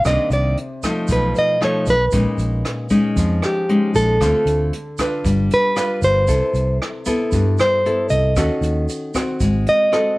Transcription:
0.05 C2 C3 D#3 A#3 D4 D#5, kick, cross-stick, closed hi-hat, shaker
0.30 C2 D5, closed hi-hat, shaker
0.57 closed hi-hat
0.83 F3 A3 D#4, kick, cross-stick, closed hi-hat, shaker
1.08 B1 B2, kick, closed hi-hat, shaker
1.13 B4
1.35 D#5, closed hi-hat, shaker
1.61 F3 A3 D#4, cross-stick, closed hi-hat
1.65 C#5
1.86 B1 B4, kick, closed hi-hat, shaker
2.12 A#1 A#2 G#3 C#4 D#4, kick, closed hi-hat, shaker
2.38 A#1, closed hi-hat, shaker
2.65 cross-stick, closed hi-hat
2.90 G#3 C#4 D#4, kick, closed hi-hat, shaker
3.16 F2 F3, kick, closed hi-hat, shaker
3.42 G4, cross-stick, closed hi-hat, shaker
3.69 G#3 C#4 D#4, closed hi-hat
3.94 A#1 A4, kick, closed hi-hat, shaker
4.20 D2 D3 A3 C4 F4, kick, cross-stick, closed hi-hat, shaker
4.45 D2, closed hi-hat, shaker
4.73 closed hi-hat
4.98 D4 F4 B4, kick, cross-stick, closed hi-hat, shaker
5.24 G1 G3, kick, closed hi-hat, shaker
5.50 B4, closed hi-hat, shaker
5.76 D4 F4 B4, cross-stick, closed hi-hat, shaker
6.02 G1 C5, kick, closed hi-hat, shaker
6.28 C2 C3 E4 A4, kick, closed hi-hat, shaker
6.54 C2, closed hi-hat, shaker
6.82 cross-stick, closed hi-hat
7.06 B3 E4 A4, kick, closed hi-hat, shaker
7.32 G2, kick, closed hi-hat, shaker
7.58 C5, cross-stick, closed hi-hat, shaker
7.85 B3 E4 A4, closed hi-hat
8.10 C2 D#5, kick, closed hi-hat, shaker
8.36 D#2 D#3 C#4 F#4 A4, kick, cross-stick, closed hi-hat, shaker
8.61 D#2, closed hi-hat, shaker
8.89 closed hi-hat, shaker
9.14 C4 F#4, kick, cross-stick, closed hi-hat, shaker
9.40 G#1 G#3, kick, closed hi-hat, shaker
9.66 D#5, closed hi-hat, shaker
9.92 C4 F#4 A4, cross-stick, closed hi-hat

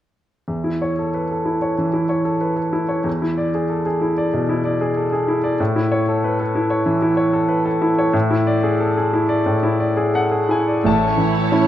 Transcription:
0.48 E2
0.64 E4
0.82 C#5
0.99 A4
1.14 B4
1.31 A4
1.45 E4
1.62 C#5
1.78 E3
1.93 E4
2.09 C#5
2.25 A4
2.41 B4
2.56 A4
2.73 E4
2.89 C#5
3.04 E2
3.22 E4
3.38 D5
3.54 G#4
3.69 A4
3.86 G#4
4.01 E4
4.18 D5
4.34 B2
4.49 E4
4.65 D5
4.81 G#4
4.97 A4
5.12 G#4
5.28 E4
5.44 D5
5.60 A2
5.76 E4
5.92 C#5
6.08 A4
6.24 B4
6.40 A4
6.55 E4
6.70 C#5
6.86 E3
7.02 E4
7.17 C#5
7.33 A4
7.49 B4
7.65 A4
7.82 E4
7.98 C#5
8.13 A2
8.31 E4
8.47 D5
8.63 G#4
8.80 A4
8.97 G#4
9.13 E4
9.29 D5
9.46 A2
9.63 E4
9.80 D5
9.97 G#4
10.14 A4 F#5
10.31 G#4
10.49 E4 G#5
10.68 D5
10.84 A1 A2 A3 E4 C#5 A5
11.03 C#4
11.18 E3 E4
11.36 A4
11.51 C#4 E4 A4

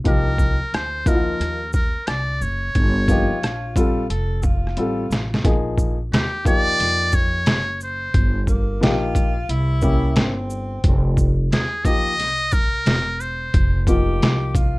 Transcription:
0.04 C2 F3 A#3 D#4 G4 A#4, kick, closed hi-hat
0.38 kick, shaker
0.61 muted upright bass stroke
0.73 D2 C5, cross-stick, closed hi-hat
1.06 F3 A#3 D#4 E4 A#4, kick, closed hi-hat, shaker
1.14 F4
1.40 D#2, cross-stick, closed hi-hat
1.73 A#4, kick, shaker
1.95 muted upright bass stroke
2.07 C2 D5, cross-stick, closed hi-hat
2.41 F#1 C#5, shaker
2.75 G1, kick, closed hi-hat
3.08 F3 A#3 D#4 F4 G4, kick, closed hi-hat, shaker
3.30 muted upright bass stroke
3.42 A#1, cross-stick, closed hi-hat
3.76 G3 C4 F4 A4, kick, closed hi-hat, shaker
4.10 F1 A4, closed hi-hat
4.42 F4, kick, shaker
4.67 cross-stick
4.77 A1 G3 C4 F4 A4, closed hi-hat
5.10 A1, snare, shaker
5.34 snare
5.44 A#1 F3 A#3 D#4 G#4, kick, closed hi-hat
5.78 kick, shaker
6.12 D#2 G4, snare, closed hi-hat
6.45 F3 A#3 D#4 G4 D5, kick, closed hi-hat, shaker
6.80 F2, snare, closed hi-hat
7.12 C#5, kick, shaker
7.46 F#1, snare, closed hi-hat
7.81 C5, shaker
8.14 G1, kick, closed hi-hat
8.47 A#3, kick, shaker
8.81 A#1 F3 A#3 D#4 F4 G4, snare, closed hi-hat
9.15 kick, closed hi-hat, shaker
9.49 C2 E4, closed hi-hat
9.81 A#3 C#4 E4 G4, kick, shaker
10.16 G1 C4, snare, closed hi-hat
10.50 shaker
10.84 F1, kick, closed hi-hat
11.17 kick, shaker
11.51 D#2 G#4, snare, closed hi-hat
11.85 F3 A#3 D#4 G4 D#5, kick, closed hi-hat, shaker
12.18 C2, snare, closed hi-hat
12.51 A#4, kick, shaker
12.86 E1, snare, closed hi-hat
13.20 C5, shaker
13.54 F1, kick, closed hi-hat
13.87 F3 A#3 D#4 F4 G4, kick, closed hi-hat, shaker
14.21 C2, snare, closed hi-hat
14.55 F4, kick, closed hi-hat, shaker

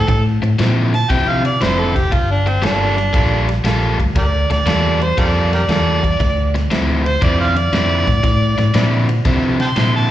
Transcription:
Already playing: A4
0.08 A2, muted overdriven electric guitar stroke, kick, ride
0.42 A2, muted overdriven electric guitar stroke, ride
0.59 A#2 D3 F3 C4 E4, snare, ride
0.94 A5, muted overdriven electric guitar stroke, ride
1.10 C3 D3 F3 C4 E4 G5, kick, ride
1.28 F5
1.45 D5, muted overdriven electric guitar stroke, ride
1.61 F1 D3 F3 C4 E4 C5, snare, ride
1.79 A4
1.96 G4, muted overdriven electric guitar stroke, kick, snare, ride
2.11 G1 F4, muted overdriven electric guitar stroke, kick, ride
2.31 D4
2.46 C4, muted overdriven electric guitar stroke, ride
2.62 G1 G3 A#3 D4 F4 A4, snare, ride
2.97 muted overdriven electric guitar stroke, ride
3.13 A#1 G3 A#3 F4 A4, kick, ride
3.48 muted overdriven electric guitar stroke, snare, ride
3.64 A#1 G3 A#3 F4 A4, snare, ride
3.99 D2, muted overdriven electric guitar stroke, kick, ride
4.16 D2 G4 A#4 D5, muted overdriven electric guitar stroke, kick, ride
4.50 D2 D5, muted overdriven electric guitar stroke, snare, ride
4.66 E2 G3 A#3 F4 A4, snare, ride
5.01 C5, muted overdriven electric guitar stroke, ride
5.18 F2 G3 A#3 F4 G4 A4 A#4 D5, kick, ride
5.53 G4 A#4 D5, muted overdriven electric guitar stroke, snare, ride
5.69 E2 G3 A#3 F4 A4, snare, ride
6.04 muted overdriven electric guitar stroke, kick, ride
6.20 D2, muted overdriven electric guitar stroke, kick, snare, ride
6.55 muted overdriven electric guitar stroke, snare, ride
6.70 D2 D3 F3 C4 E4, snare, ride
7.06 C5, muted overdriven electric guitar stroke, ride
7.22 F2 D3 F3 C4 E4 D5, kick, ride
7.40 C5 D5 F5
7.56 D5, muted overdriven electric guitar stroke, ride
7.72 F2 D3 F3 C4 E4, snare, ride
8.07 A2, muted overdriven electric guitar stroke, kick, snare, ride
8.23 A2, muted overdriven electric guitar stroke, kick, snare, ride
8.58 A2, muted overdriven electric guitar stroke, snare, ride
8.74 A#2 D3 F3 C4 E4, snare, ride
9.09 muted overdriven electric guitar stroke, ride
9.25 C3 D3 F3 C4 E4, kick, ride
9.60 G5 A5 C6, muted overdriven electric guitar stroke, snare, ride
9.76 A#2 D3 F3 C4 E4, snare, ride
9.96 A5

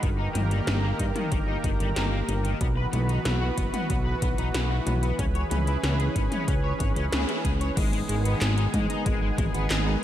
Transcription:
0.03 G1 D#3 A#3 G4 A#4, kick, closed hi-hat
0.19 D#4
0.35 G1 D#3, closed hi-hat, mid tom
0.51 G3, closed hi-hat
0.67 G1 D#3, snare, closed hi-hat
0.83 A#3
0.99 G2 D#3, kick, closed hi-hat
1.16 D#3, closed hi-hat, mid tom
1.32 G1 D#3, kick, closed hi-hat
1.48 D#4
1.64 G1 D#3, kick, closed hi-hat
1.80 G1 G3, closed hi-hat
1.96 G1 D#3, snare, closed hi-hat
2.12 A#3
2.29 G1 D#3, closed hi-hat
2.45 D#3, closed hi-hat
2.61 B1 E3 B3 F#4 B4, kick, closed hi-hat
2.77 B4
2.93 B1 B3, closed hi-hat, mid tom
3.09 D#4, closed hi-hat
3.25 B1 B3, snare, closed hi-hat
3.41 F#4
3.57 F#1 B3, kick, closed hi-hat
3.73 B3, closed hi-hat, mid tom
3.90 B1 B3, kick, closed hi-hat
4.06 B4
4.22 B1 B3, kick, closed hi-hat
4.38 B1 D#4, closed hi-hat
4.54 B1 B3, snare, closed hi-hat
4.70 F#4
4.86 B1 B3, closed hi-hat, mid tom
5.03 B3, closed hi-hat
5.19 C#2 C#4 G#4 B4, kick, closed hi-hat
5.35 C#5, closed hi-hat
5.51 C#2 C#4, closed hi-hat, mid tom
5.67 E4, closed hi-hat
5.83 C#2 C#4, snare, closed hi-hat
6.00 G#4, closed hi-hat
6.16 G#1 C#4, kick, closed hi-hat
6.32 C#4, closed hi-hat, mid tom
6.48 C#2 C#4, kick, closed hi-hat
6.64 C#5
6.80 G#1 C#5, kick, closed hi-hat
6.96 C#2 C#4, closed hi-hat
7.12 C#2 G#4, snare, closed hi-hat
7.29 E4, closed hi-hat
7.45 C#2 G#4, kick, closed hi-hat
7.61 C#5, closed hi-hat
7.77 G#1 D#3 G#3 B3 G#4, kick, closed hi-hat, crash
7.93 G#3, closed hi-hat
8.09 G#1 G#3, closed hi-hat
8.25 B3, closed hi-hat
8.41 G#1 G#4, snare, clap, closed hi-hat
8.57 D#4, closed hi-hat
8.74 G#2 G#3, kick, closed hi-hat, mid tom
8.90 D#4, closed hi-hat
9.06 G#1 G#3, kick, closed hi-hat
9.22 G#3
9.38 G#1 G#3, kick, closed hi-hat, mid tom
9.54 G#1 B3, closed hi-hat
9.71 G#1 G#4, snare, clap, closed hi-hat
9.87 D#4

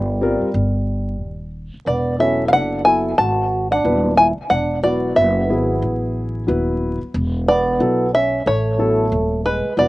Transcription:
Already playing: G1 G3 A#4
0.21 G3 C4 F4 A#4
0.42 muted upright bass stroke
0.54 G1
1.20 D#1
1.74 muted upright bass stroke
1.86 E1 B3 D5
2.18 F#3 B3 C#4 E4 A4 E5
2.47 C#4 F5
2.52 F#1 D4 F#5
2.84 F#3 B3 E4 A4 G#5
3.18 G#1 F#4 A5
3.71 D4 F#5
3.84 D#1 F#3 B3 E4 B4
4.17 E4 G#5
4.38 muted upright bass stroke
4.50 E1 D4 F#5
4.83 F#3 B3 E4 F#4 D5
5.16 F#1 B3 E5
5.49 G#1 F#3 B3 E4 G#4
5.82 A1
6.47 D#1 F#3 B3 E4 B4
7.02 muted upright bass stroke
7.14 E1
7.48 B3 D5
7.79 B1 F#3 B3 E4 A4
8.14 C#4 E5
8.46 A1 A3 C#5
8.78 F#3 B3 E4 A4
9.12 D#1
9.45 G#3 B4
9.65 muted upright bass stroke
9.77 E1 F#3 B3 E4 B4 D5

